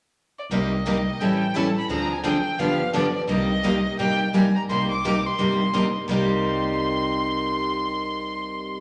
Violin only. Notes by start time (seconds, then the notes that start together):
0.39 D5
0.52 D#5
1.20 G5
1.56 A5
1.78 B5
1.90 A#5
2.13 G#5
2.25 G5
2.59 F5
2.95 D5
3.16 D5
3.30 D#5
3.99 G5
4.35 G#5
4.56 A#5
4.70 C6
4.91 D6
5.26 C6
6.10 C6